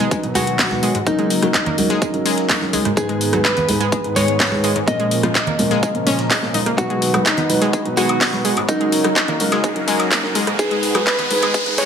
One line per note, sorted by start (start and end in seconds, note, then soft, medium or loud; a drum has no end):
0.00 1.05 D#3 medium
0.00 2.93 F#3 medium
0.00 1.05 B3 medium
0.00 0.26 D#4 medium
0.00 2.93 F#4 medium
0.00 1.05 B4 medium
0.00 closed hi-hat soft
0.11 0.20 G#3 medium
0.11 kick loud
0.11 closed hi-hat medium
0.11 tambourine medium
0.23 0.68 B2 medium
0.23 0.68 F#3 medium
0.23 0.68 D#4 medium
0.23 0.68 B4 medium
0.23 closed hi-hat soft
0.35 0.43 G#3 loud
0.35 0.97 F#4 medium
0.35 cross-stick medium
0.35 open hi-hat loud
0.35 tambourine medium
0.35 high conga medium
0.47 closed hi-hat medium
0.59 0.71 B3 medium
0.59 kick loud
0.59 snare loud
0.59 clap loud
0.59 closed hi-hat medium
0.59 open hi-hat medium
0.71 0.83 B2 medium
0.71 0.83 F#3 medium
0.71 0.83 D#4 medium
0.71 0.83 B4 medium
0.71 snare soft
0.71 high conga medium
0.83 0.94 G#3 medium
0.83 open hi-hat loud
0.83 tambourine medium
0.95 1.00 G#2 medium
0.95 closed hi-hat medium
1.06 2.95 C#3 medium
1.06 1.40 F#3 medium
1.06 2.95 A#3 medium
1.06 1.40 C#4 medium
1.06 2.88 D#4 medium
1.06 1.40 A#4 loud
1.06 kick loud
1.06 closed hi-hat medium
1.06 tambourine medium
1.19 1.30 G#3 medium
1.19 closed hi-hat soft
1.30 open hi-hat loud
1.30 tambourine medium
1.42 1.47 F#3 medium
1.42 1.54 F#3 medium
1.42 1.54 C#4 medium
1.42 1.54 A#4 medium
1.42 cross-stick medium
1.42 closed hi-hat medium
1.54 kick loud
1.54 snare loud
1.54 clap loud
1.54 closed hi-hat medium
1.54 tambourine medium
1.66 1.74 A#3 medium
1.66 closed hi-hat soft
1.66 low conga medium
1.78 1.90 F#3 medium
1.78 1.90 C#4 medium
1.78 1.90 A#4 medium
1.78 open hi-hat loud
1.78 tambourine medium
1.78 high conga medium
1.90 1.98 G#3 loud
1.90 snare medium
1.90 closed hi-hat medium
2.02 2.10 G#3 medium
2.02 kick loud
2.02 closed hi-hat medium
2.02 tambourine medium
2.14 2.59 F#3 medium
2.14 2.59 C#4 medium
2.14 2.59 A#4 medium
2.14 closed hi-hat soft
2.26 2.34 G#3 loud
2.26 snare soft
2.26 open hi-hat loud
2.26 tambourine medium
2.38 snare soft
2.38 closed hi-hat medium
2.49 2.61 A#3 medium
2.49 kick loud
2.49 snare loud
2.49 clap loud
2.49 open hi-hat medium
2.49 tambourine medium
2.61 2.73 F#3 medium
2.61 2.73 C#4 medium
2.61 2.73 A#4 medium
2.61 snare soft
2.73 2.85 G#3 medium
2.73 open hi-hat loud
2.73 tambourine medium
2.73 high conga medium
2.85 2.90 G#2 medium
2.85 cross-stick medium
2.85 closed hi-hat medium
2.97 3.30 G#2 medium
2.97 4.86 D#3 medium
2.97 4.86 G#3 medium
2.97 3.30 G#3 medium
2.97 3.30 D#4 medium
2.97 3.40 G#4 loud
2.97 4.86 G#4 medium
2.97 3.40 G#4 loud
2.97 3.30 B4 loud
2.97 kick loud
2.97 closed hi-hat medium
2.97 tambourine medium
3.09 3.20 G#3 medium
3.09 closed hi-hat soft
3.21 open hi-hat loud
3.21 tambourine medium
3.33 3.45 G#2 medium
3.33 3.38 F#3 medium
3.33 3.45 G#3 medium
3.33 3.45 D#4 medium
3.33 3.45 B4 medium
3.33 cross-stick medium
3.33 closed hi-hat medium
3.33 high conga medium
3.45 4.07 B4 medium
3.45 kick loud
3.45 snare loud
3.45 clap loud
3.45 closed hi-hat medium
3.45 tambourine medium
3.57 3.65 B3 medium
3.57 closed hi-hat soft
3.57 low conga medium
3.68 3.80 G#2 medium
3.68 3.80 G#3 medium
3.68 3.80 D#4 medium
3.68 3.80 B4 medium
3.68 open hi-hat loud
3.68 tambourine medium
3.68 high conga medium
3.81 3.89 G#3 loud
3.81 closed hi-hat soft
3.81 closed hi-hat medium
3.92 4.01 G#3 medium
3.92 kick loud
3.92 closed hi-hat medium
3.92 tambourine medium
4.04 4.49 G#2 medium
4.04 4.49 G#3 medium
4.04 4.49 D#4 medium
4.04 4.49 B4 medium
4.04 closed hi-hat soft
4.16 4.25 G#3 loud
4.16 4.78 C#5 medium
4.16 cross-stick medium
4.16 open hi-hat loud
4.16 tambourine medium
4.16 high conga medium
4.28 closed hi-hat medium
4.40 4.52 B3 medium
4.40 kick loud
4.40 snare loud
4.40 clap loud
4.40 closed hi-hat medium
4.40 open hi-hat medium
4.52 4.64 G#2 medium
4.52 4.64 G#3 medium
4.52 4.64 D#4 medium
4.52 4.64 B4 medium
4.52 snare soft
4.52 high conga medium
4.64 4.75 G#3 medium
4.64 open hi-hat loud
4.64 tambourine medium
4.76 4.81 G#2 medium
4.76 closed hi-hat soft
4.88 5.21 A#2 medium
4.88 6.76 C#3 medium
4.88 5.21 F3 medium
4.88 6.76 F3 medium
4.88 6.76 A#3 medium
4.88 5.21 C#4 medium
4.88 6.76 F4 medium
4.88 5.21 A#4 loud
4.88 6.76 A#4 medium
4.88 6.69 D#5 medium
4.88 kick loud
4.88 closed hi-hat medium
4.88 tambourine medium
5.00 5.11 G#3 medium
5.00 closed hi-hat soft
5.11 open hi-hat loud
5.11 tambourine medium
5.23 5.35 A#2 medium
5.23 5.28 F3 medium
5.23 5.35 F3 medium
5.23 5.35 C#4 medium
5.23 5.35 A#4 medium
5.23 cross-stick medium
5.23 closed hi-hat soft
5.35 kick loud
5.35 snare loud
5.35 clap loud
5.35 closed hi-hat medium
5.35 tambourine medium
5.47 5.55 A#3 medium
5.47 closed hi-hat soft
5.47 low conga medium
5.59 5.71 A#2 medium
5.59 5.71 F3 medium
5.59 5.71 C#4 medium
5.59 5.71 A#4 medium
5.59 open hi-hat loud
5.59 tambourine medium
5.59 high conga medium
5.71 5.79 G#3 loud
5.71 snare medium
5.71 closed hi-hat soft
5.83 5.91 G#3 medium
5.83 kick loud
5.83 closed hi-hat medium
5.83 tambourine medium
5.95 6.04 A#2 medium
5.95 6.04 F3 medium
5.95 6.04 C#4 medium
5.95 6.04 A#4 medium
5.95 closed hi-hat soft
6.07 6.25 A#2 medium
6.07 6.25 F3 medium
6.07 6.15 C#4 loud
6.07 6.25 C#4 medium
6.07 6.25 D#5 medium
6.07 snare medium
6.07 open hi-hat loud
6.07 tambourine medium
6.19 snare soft
6.19 closed hi-hat medium
6.30 6.35 G#4 medium
6.30 kick loud
6.30 snare loud
6.30 clap loud
6.30 open hi-hat medium
6.30 tambourine medium
6.43 6.54 A#2 medium
6.43 6.54 F3 medium
6.43 6.54 C#4 medium
6.43 6.54 A#4 medium
6.43 snare soft
6.54 6.63 D#4 medium
6.54 open hi-hat loud
6.54 tambourine medium
6.54 high conga medium
6.66 6.71 A#3 medium
6.66 cross-stick medium
6.66 closed hi-hat medium
6.78 7.11 B2 loud
6.78 8.67 D#3 medium
6.78 10.55 F#3 medium
6.78 7.11 F#3 medium
6.78 8.67 B3 medium
6.78 7.11 D#4 medium
6.78 7.21 F#4 loud
6.78 8.67 F#4 medium
6.78 7.21 F#4 loud
6.78 7.11 B4 loud
6.78 kick loud
6.78 closed hi-hat medium
6.78 tambourine medium
6.78 riser medium
6.90 7.01 G#3 medium
6.90 closed hi-hat soft
7.02 open hi-hat loud
7.02 tambourine medium
7.14 7.26 B2 medium
7.14 7.25 F#3 medium
7.14 7.19 F#3 medium
7.14 7.26 D#4 medium
7.14 7.26 B4 medium
7.14 cross-stick medium
7.14 closed hi-hat soft
7.14 high conga medium
7.14 high woodblock medium
7.26 7.88 D#4 medium
7.26 kick loud
7.26 snare loud
7.26 clap loud
7.26 closed hi-hat medium
7.26 tambourine medium
7.37 7.46 B3 medium
7.37 closed hi-hat soft
7.37 low conga medium
7.49 7.61 B2 medium
7.49 7.61 F#3 medium
7.49 7.61 D#4 medium
7.49 7.61 B4 medium
7.49 open hi-hat loud
7.49 tambourine medium
7.49 high conga medium
7.62 7.70 G#3 loud
7.62 closed hi-hat soft
7.62 closed hi-hat medium
7.62 high woodblock soft
7.73 7.82 G#3 medium
7.73 kick loud
7.73 closed hi-hat medium
7.73 tambourine medium
7.85 8.30 B2 medium
7.85 8.30 F#3 medium
7.85 8.30 D#4 medium
7.85 8.30 B4 medium
7.85 closed hi-hat soft
7.97 8.05 G#3 loud
7.97 8.59 F#4 medium
7.97 cross-stick medium
7.97 open hi-hat loud
7.97 tambourine medium
7.97 high conga medium
8.09 closed hi-hat medium
8.09 high woodblock medium
8.21 8.32 B3 medium
8.21 kick loud
8.21 snare loud
8.21 clap loud
8.21 closed hi-hat medium
8.21 open hi-hat medium
8.33 8.45 B2 medium
8.33 8.45 F#3 medium
8.33 8.45 D#4 medium
8.33 8.45 B4 medium
8.33 snare soft
8.33 high conga medium
8.45 8.56 G#3 medium
8.45 open hi-hat loud
8.45 tambourine medium
8.57 8.62 G#2 medium
8.57 closed hi-hat soft
8.57 high woodblock medium
8.68 10.57 C#3 medium
8.68 9.02 F#3 loud
8.68 9.02 C#4 medium
8.68 10.50 D#4 medium
8.68 10.57 F#4 medium
8.68 10.57 A#4 medium
8.68 9.02 A#4 loud
8.68 kick loud
8.68 closed hi-hat medium
8.68 tambourine medium
8.81 8.92 G#3 medium
8.81 closed hi-hat soft
8.92 open hi-hat loud
8.92 tambourine medium
9.04 9.16 F#3 medium
9.04 9.09 F#3 medium
9.04 9.16 C#4 medium
9.04 9.16 A#4 medium
9.04 cross-stick medium
9.04 closed hi-hat medium
9.04 high woodblock soft
9.16 kick loud
9.16 snare loud
9.16 clap loud
9.16 closed hi-hat medium
9.16 tambourine medium
9.28 9.36 A#3 medium
9.28 closed hi-hat soft
9.28 low conga medium
9.40 9.52 F#3 medium
9.40 9.52 C#4 medium
9.40 9.52 A#4 medium
9.40 open hi-hat loud
9.40 tambourine medium
9.40 high conga medium
9.52 9.60 G#3 loud
9.52 snare medium
9.52 closed hi-hat medium
9.52 high woodblock medium
9.64 9.72 G#3 medium
9.64 kick loud
9.64 closed hi-hat medium
9.64 tambourine medium
9.76 10.21 F#3 medium
9.76 10.21 C#4 medium
9.76 10.21 A#4 medium
9.76 closed hi-hat soft
9.88 9.96 G#3 loud
9.88 snare medium
9.88 open hi-hat loud
9.88 tambourine medium
9.99 snare soft
9.99 closed hi-hat medium
9.99 high woodblock medium
10.11 10.23 A#3 medium
10.11 kick loud
10.11 snare loud
10.11 clap loud
10.11 open hi-hat medium
10.11 tambourine medium
10.23 10.35 F#3 medium
10.23 10.35 C#4 medium
10.23 10.35 A#4 medium
10.23 snare soft
10.35 10.47 G#3 medium
10.35 open hi-hat loud
10.35 tambourine medium
10.35 high conga medium
10.47 10.52 G#2 medium
10.47 cross-stick medium
10.47 closed hi-hat medium
10.47 high woodblock soft
10.59 10.92 G#2 medium
10.59 10.92 G#3 medium
10.59 10.92 D#4 medium
10.59 11.02 G#4 loud
10.59 10.92 B4 loud
10.59 kick loud
10.59 closed hi-hat medium
10.59 tambourine medium
10.71 10.82 G#3 medium
10.71 closed hi-hat soft
10.83 open hi-hat loud
10.83 tambourine medium
10.95 11.06 G#2 medium
10.95 11.00 F#3 medium
10.95 11.06 G#3 medium
10.95 11.06 D#4 medium
10.95 11.06 B4 medium
10.95 cross-stick medium
10.95 closed hi-hat medium
10.95 high conga medium
10.95 high woodblock medium
11.07 11.69 B4 medium
11.07 kick loud
11.07 snare loud
11.07 clap loud
11.07 closed hi-hat medium
11.07 tambourine medium
11.19 11.27 B3 medium
11.19 closed hi-hat soft
11.19 low conga medium
11.30 11.42 G#2 medium
11.30 11.42 G#3 medium
11.30 11.42 D#4 medium
11.30 11.42 B4 medium
11.30 open hi-hat loud
11.30 tambourine medium
11.30 high conga medium
11.42 11.51 G#3 loud
11.42 closed hi-hat soft
11.42 closed hi-hat medium
11.42 high woodblock medium
11.54 11.63 G#3 medium
11.54 kick loud
11.54 closed hi-hat medium
11.54 tambourine medium
11.66 11.85 G#2 medium
11.66 11.85 G#3 medium
11.66 11.85 D#4 medium
11.66 11.85 B4 loud
11.66 closed hi-hat soft
11.77 11.85 G#3 loud
11.77 11.85 C#5 loud
11.77 11.85 C#5 medium
11.77 cross-stick medium
11.77 snare loud
11.77 open hi-hat loud
11.77 tambourine medium
11.77 high conga medium